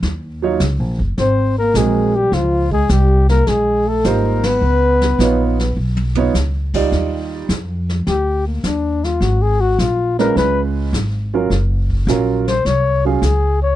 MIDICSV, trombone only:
0, 0, Header, 1, 2, 480
1, 0, Start_track
1, 0, Tempo, 573614
1, 28, Time_signature, 4, 2, 24, 8
1, 11510, End_track
2, 0, Start_track
2, 0, Title_t, "Trombone"
2, 0, Program_c, 0, 57
2, 995, Note_on_c, 0, 60, 68
2, 1299, Note_off_c, 0, 60, 0
2, 1329, Note_on_c, 0, 58, 66
2, 1493, Note_on_c, 0, 56, 57
2, 1506, Note_off_c, 0, 58, 0
2, 1806, Note_on_c, 0, 55, 69
2, 1818, Note_off_c, 0, 56, 0
2, 1958, Note_on_c, 0, 53, 67
2, 1970, Note_off_c, 0, 55, 0
2, 2263, Note_off_c, 0, 53, 0
2, 2268, Note_on_c, 0, 56, 74
2, 2430, Note_on_c, 0, 55, 65
2, 2443, Note_off_c, 0, 56, 0
2, 2750, Note_off_c, 0, 55, 0
2, 2755, Note_on_c, 0, 58, 72
2, 2905, Note_on_c, 0, 56, 72
2, 2917, Note_off_c, 0, 58, 0
2, 3231, Note_on_c, 0, 57, 67
2, 3244, Note_off_c, 0, 56, 0
2, 3395, Note_on_c, 0, 58, 64
2, 3408, Note_off_c, 0, 57, 0
2, 3723, Note_on_c, 0, 59, 77
2, 3736, Note_off_c, 0, 58, 0
2, 4833, Note_off_c, 0, 59, 0
2, 11510, End_track
0, 0, End_of_file